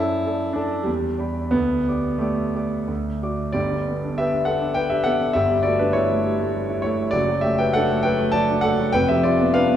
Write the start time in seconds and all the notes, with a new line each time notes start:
Already playing: F#2 E4
0.00 A4 D5 A5
0.26 A4 D5 A5
0.53 D4 A4 D5 A5
0.83 E2 G3
1.18 G4 D5 B5
1.51 D2 B3
1.89 G4 D5 D6
2.18 A3 G4 D5 D6
2.56 G4 D5 D6
2.88 D2
3.23 F#4 D5 D6
3.52 G1 G2 G4 D5
3.71 D3
3.88 B3
4.04 D4
4.18 G4 B4 E5
4.33 D4
4.45 A4 B4 F#5
4.61 D4
4.74 B4 G5
4.90 D4 G4 E5
5.04 B3 A4 F#5
5.21 D3
5.33 G1 G2 G4 E5
5.50 G3
5.63 A3 F#4 D5
5.79 G3 D4 B4
5.93 E4 C#5
6.11 A3
6.26 G3
6.40 A3
6.55 G3
6.70 E4
6.82 A3 E4 C#5
6.99 G3
7.11 F#1 F#2 F#4 D5
7.28 F#3
7.41 A3 G4 E5
7.58 F#3 B4 G5
7.74 D4 A4 F#5
7.91 A3
8.03 F#3 B4 G5
8.19 A3
8.32 F#3 D5 A5
8.50 D4
8.61 A3 A4 F#5
8.79 F#3
8.92 F1 F2 B4 G5
9.09 F3 G4 E5
9.23 G3 F4 D5
9.41 B3
9.54 D4 B4 F5
9.69 B3